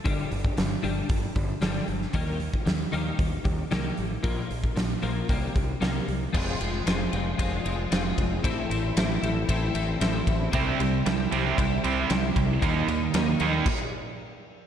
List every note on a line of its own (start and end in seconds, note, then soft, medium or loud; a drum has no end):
0.04 0.23 G1 medium
0.04 0.29 G2 medium
0.04 0.29 D3 medium
0.04 0.30 G3 medium
0.04 kick loud
0.04 open hi-hat medium
0.31 0.49 G1 medium
0.31 0.55 G2 medium
0.31 0.55 D3 medium
0.31 open hi-hat soft
0.45 kick medium
0.57 0.75 G1 medium
0.57 0.81 G2 medium
0.57 0.81 D3 medium
0.57 snare loud
0.57 open hi-hat medium
0.82 1.01 G1 medium
0.82 1.08 G2 medium
0.82 1.08 D3 medium
0.82 1.08 G3 medium
0.82 open hi-hat soft
1.09 1.27 G1 medium
1.09 1.33 G2 medium
1.09 1.33 D3 medium
1.09 kick loud
1.09 open hi-hat medium
1.35 1.53 G1 medium
1.35 1.59 G2 medium
1.35 1.59 D3 medium
1.35 kick medium
1.35 open hi-hat soft
1.61 1.79 G1 medium
1.61 1.86 G2 medium
1.61 1.86 D3 loud
1.61 1.87 G3 medium
1.61 snare loud
1.61 open hi-hat medium
1.87 2.05 G1 medium
1.87 2.11 G2 medium
1.87 2.11 D3 medium
1.87 open hi-hat soft
2.02 snare soft
2.13 2.48 D#2 medium
2.13 2.38 D#3 medium
2.13 2.39 G3 medium
2.13 2.39 A#3 loud
2.13 kick medium
2.13 open hi-hat medium
2.40 2.64 G3 medium
2.40 open hi-hat soft
2.54 kick medium
2.65 2.84 D#2 medium
2.65 2.90 D#3 medium
2.65 2.90 G3 medium
2.65 snare loud
2.65 open hi-hat medium
2.92 3.10 D#2 medium
2.92 3.17 D#3 medium
2.92 3.17 G3 medium
2.92 3.18 A#3 medium
2.92 open hi-hat soft
3.18 3.36 D#2 medium
3.18 3.42 D#3 medium
3.18 3.42 G3 medium
3.18 kick loud
3.18 open hi-hat medium
3.44 3.62 D#2 medium
3.44 3.68 D#3 medium
3.44 3.69 G3 medium
3.44 kick medium
3.44 open hi-hat soft
3.71 3.89 C2 medium
3.71 3.96 D#3 medium
3.71 3.96 G3 medium
3.71 3.96 A#3 medium
3.71 snare loud
3.71 open hi-hat medium
3.97 4.15 A1 medium
3.97 4.21 D#3 medium
3.97 4.21 G3 medium
3.97 open hi-hat soft
4.23 4.41 A#1 medium
4.23 4.48 A#2 medium
4.23 4.49 F3 medium
4.23 4.49 A#3 loud
4.23 kick loud
4.23 open hi-hat medium
4.49 4.68 A#1 medium
4.49 4.73 A#2 medium
4.49 4.74 F3 medium
4.49 open hi-hat soft
4.64 kick medium
4.76 4.94 A#1 medium
4.76 5.00 A#2 medium
4.76 5.00 F3 medium
4.76 snare loud
4.76 open hi-hat medium
5.02 5.20 A#1 medium
5.02 5.27 A#2 medium
5.02 5.27 F3 medium
5.02 5.28 A#3 medium
5.02 open hi-hat soft
5.29 5.46 C2 medium
5.29 5.54 C3 medium
5.29 5.54 G3 medium
5.29 5.54 A#3 medium
5.29 kick loud
5.29 open hi-hat medium
5.55 5.73 C2 medium
5.55 5.79 C3 medium
5.55 5.79 G3 medium
5.55 kick medium
5.55 open hi-hat medium
5.81 5.99 C2 medium
5.81 6.06 C3 medium
5.81 6.06 G3 medium
5.81 6.06 A#3 medium
5.81 snare loud
5.81 open hi-hat medium
6.08 6.25 C2 medium
6.08 6.32 C3 medium
6.08 6.32 G3 medium
6.08 open hi-hat soft
6.33 6.54 F1 medium
6.33 6.84 F3 medium
6.33 6.60 G#3 loud
6.33 6.60 C4 loud
6.33 6.58 F4 loud
6.33 kick loud
6.33 crash medium
6.59 6.81 F1 medium
6.59 6.85 G#3 medium
6.59 6.86 C4 medium
6.59 6.87 F4 medium
6.59 ride medium
6.85 7.06 F1 medium
6.85 7.37 F3 medium
6.85 7.12 G#3 medium
6.85 7.12 C4 medium
6.85 7.10 F4 medium
6.85 snare loud
6.85 ride medium
7.12 7.33 F1 medium
7.12 7.37 G#3 medium
7.12 7.39 C4 medium
7.12 7.39 F4 medium
7.12 ride medium
7.38 7.59 F1 medium
7.38 7.89 F3 medium
7.38 7.65 G#3 medium
7.38 7.65 C4 medium
7.38 7.63 F4 medium
7.38 kick medium
7.38 ride medium
7.64 7.86 F1 medium
7.64 7.90 G#3 medium
7.64 7.92 C4 medium
7.64 7.91 F4 medium
7.64 ride medium
7.91 8.12 F1 medium
7.91 8.42 F3 medium
7.91 8.43 G#3 medium
7.91 8.44 C4 medium
7.91 8.43 F4 medium
7.91 snare loud
7.91 ride medium
8.18 8.38 F1 medium
8.18 kick medium
8.18 ride medium
8.43 8.64 A1 medium
8.43 8.96 A2 medium
8.43 8.95 E3 medium
8.43 8.70 A3 medium
8.43 8.71 C4 medium
8.43 8.69 E4 medium
8.43 kick loud
8.43 ride medium
8.70 8.90 A1 medium
8.70 8.96 A3 medium
8.70 8.97 C4 medium
8.70 8.98 E4 medium
8.70 ride medium
8.96 9.17 A1 medium
8.96 9.48 E3 medium
8.96 9.23 A3 medium
8.96 9.23 C4 medium
8.96 9.22 E4 medium
8.96 snare loud
8.96 ride loud
9.22 9.43 A1 medium
9.22 9.48 A3 medium
9.22 9.48 C4 medium
9.22 9.49 E4 medium
9.22 ride medium
9.48 9.69 A1 medium
9.48 10.01 A2 medium
9.48 9.99 E3 medium
9.48 9.75 A3 medium
9.48 9.74 C4 loud
9.48 9.73 E4 medium
9.48 kick medium
9.48 ride loud
9.74 9.95 A1 medium
9.74 10.00 A3 medium
9.74 10.00 C4 medium
9.74 10.01 E4 medium
9.74 ride medium
10.00 10.21 A1 medium
10.00 10.51 E3 medium
10.00 10.52 A3 medium
10.00 10.52 C4 medium
10.00 10.52 E4 medium
10.00 snare loud
10.00 ride medium
10.27 10.47 A1 medium
10.27 kick medium
10.27 ride medium
10.52 10.73 C2 medium
10.52 11.03 C3 loud
10.52 10.80 G3 medium
10.52 10.78 C4 loud
10.52 10.77 E4 loud
10.52 kick loud
10.52 ride medium
10.78 10.99 C2 medium
10.78 11.03 C3 medium
10.78 11.05 G3 medium
10.78 11.04 C4 medium
10.78 11.05 E4 medium
10.78 ride medium
11.04 11.26 C2 medium
11.04 11.55 C3 medium
11.04 11.33 G3 medium
11.04 11.31 C4 medium
11.04 11.30 E4 medium
11.04 snare loud
11.04 ride medium
11.31 11.52 C2 medium
11.31 11.56 C3 medium
11.31 11.56 G3 medium
11.31 11.57 C4 medium
11.31 11.57 E4 medium
11.31 ride medium
11.57 11.78 C2 medium
11.57 12.07 C3 medium
11.57 11.84 G3 medium
11.57 11.83 C4 medium
11.57 11.82 E4 loud
11.57 kick medium
11.57 ride medium
11.83 12.04 C2 medium
11.83 12.08 C3 medium
11.83 12.08 G3 medium
11.83 12.09 C4 medium
11.83 12.09 E4 medium
11.83 ride medium
12.08 12.30 C2 medium
12.08 12.60 C3 medium
12.08 12.60 G3 medium
12.08 12.61 C4 medium
12.08 12.61 E4 medium
12.08 snare loud
12.08 ride medium
12.36 12.56 C2 medium
12.36 12.59 C3 medium
12.36 12.60 G3 medium
12.36 kick medium
12.36 ride medium
12.61 12.82 D#2 medium
12.61 13.12 D#3 medium
12.61 12.89 G3 loud
12.61 12.87 A#3 loud
12.61 12.86 D#4 medium
12.61 kick loud
12.61 ride medium
12.88 13.08 D#2 medium
12.88 13.12 D#3 medium
12.88 13.13 G3 medium
12.88 13.14 A#3 medium
12.88 13.14 D#4 medium
12.88 ride medium
13.13 13.34 D#2 medium
13.13 13.64 D#3 medium
13.13 13.41 G3 medium
13.13 13.39 A#3 medium
13.13 13.38 D#4 medium
13.13 snare loud
13.13 ride medium
13.40 13.60 D#2 medium
13.40 13.65 D#3 medium
13.40 13.65 G3 medium
13.40 13.65 A#3 medium
13.40 13.64 D#4 medium
13.40 ride medium
13.66 kick loud
13.66 crash medium